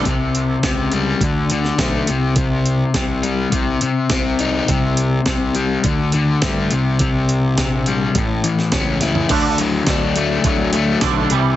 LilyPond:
<<
  \new Staff \with { instrumentName = "Clean electric guitar" } { \clef bass \time 4/4 \key c \lydian \tempo 4 = 104 r1 | r1 | r1 | r1 |
<d a d'>8 <d a>8 <d a>8 <d a>8 <d a>8 <d a>8 <d a d'>8 <c e g>8 | }
  \new Staff \with { instrumentName = "Overdriven electric guitar" } { \clef bass \time 4/4 \key c \lydian c4 c8 g8 d8 d8 a8 c8 | c4 c8 g8 c8 c8 c'8 ees'8 | c4 c8 g8 d8 d8 a8 c8 | c4 c8 g8 a,8 e8 cis'8 e'8 |
d8 fis8 d'8 a8 fis8 a8 d8 c8 | }
  \new Staff \with { instrumentName = "Fingered electric bass" } { \clef bass \time 4/4 \key c \lydian c,4 des,4 d,4 b,,8 c,8~ | c,4 c,4 c,8 r8 c,4 | c,4 c,4 d,4 g,8 c,8~ | c,4 bes,,4 a,,8 r8 cis,4 |
d,4 d,4 d,4 b,,8 c,8 | }
  \new DrumStaff \with { instrumentName = "Drums" } \drummode { \time 4/4 <hh bd>8 hh8 <hh bd sn>8 hh8 <hh bd>8 hh16 sn16 <hh bd sn>8 hh8 | <hh bd>8 hh8 <hh bd sn>8 hh8 <hh bd>8 hh8 <hh bd sn>8 hh8 | <hh bd>8 hh8 <hh bd sn>8 hh8 <hh bd>8 hh8 <hh bd sn>8 hh8 | <hh bd>8 hh8 <hh bd sn>8 hh8 <hh bd>8 hh16 sn16 <hh bd sn>8 <hh sn>16 tomfh16 |
<cymc hh bd>8 hh8 <hh bd sn>8 hh8 <hh bd>8 hh8 <hh bd sn>8 hh8 | }
>>